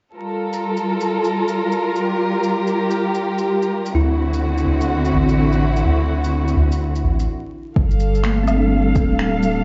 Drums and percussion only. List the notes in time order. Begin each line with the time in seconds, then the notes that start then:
0.53 shaker
0.77 shaker
1.01 shaker
1.24 shaker
1.48 shaker
1.72 shaker
1.96 shaker
2.44 shaker
2.67 shaker
2.91 shaker
3.15 shaker
3.38 shaker
3.62 shaker
3.86 shaker
4.34 shaker
4.58 shaker
4.81 shaker
5.05 shaker
5.29 shaker
5.52 shaker
5.76 shaker
6.24 shaker
6.48 shaker
6.72 shaker
6.95 shaker
7.19 shaker
7.76 kick
7.91 shaker
8.00 shaker
8.15 shaker
8.24 finger snap
8.48 low woodblock, shaker
8.95 kick, shaker
9.19 finger snap
9.43 shaker